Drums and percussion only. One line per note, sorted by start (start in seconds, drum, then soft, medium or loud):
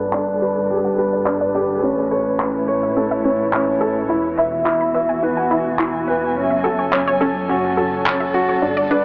0.13 clap medium
1.26 clap medium
2.40 clap medium
3.53 clap medium
4.66 clap medium
5.79 clap medium
6.93 clap medium
8.06 clap medium